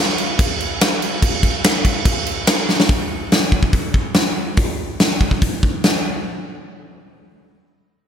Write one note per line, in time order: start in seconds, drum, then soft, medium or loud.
0.09 snare soft
0.18 crash medium
0.39 kick loud
0.39 crash medium
0.60 crash medium
0.81 snare loud
0.81 crash medium
1.02 crash medium
1.23 kick loud
1.23 crash medium
1.43 kick medium
1.43 crash medium
1.64 snare loud
1.64 crash medium
1.85 kick medium
1.85 crash medium
2.05 kick loud
2.05 crash loud
2.26 crash medium
2.47 snare loud
2.47 crash loud
2.69 snare medium
2.80 snare medium
2.89 kick loud
2.89 open hi-hat soft
3.32 snare medium
3.32 open hi-hat soft
3.42 snare soft
3.52 kick medium
3.63 kick medium
3.73 kick medium
3.73 open hi-hat soft
3.94 kick medium
4.14 snare medium
4.14 open hi-hat soft
4.57 kick loud
4.57 open hi-hat soft
5.00 snare medium
5.00 open hi-hat soft
5.21 kick medium
5.31 kick medium
5.41 kick medium
5.41 open hi-hat soft
5.63 kick medium
5.84 snare medium
5.84 open hi-hat soft
5.95 snare soft